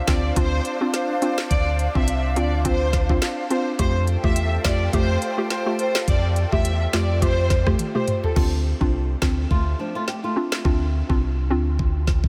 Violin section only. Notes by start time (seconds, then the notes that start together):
0.08 D5
0.36 C5
0.93 C5
1.22 C5
1.51 D5
1.95 E5
2.36 D5
2.65 C5
3.51 C5
3.79 C5
4.24 E5
4.65 D5
4.93 C5
5.50 C5
5.79 C5
6.08 D5
6.52 E5
6.93 D5
7.22 C5
7.95 C5
8.24 A4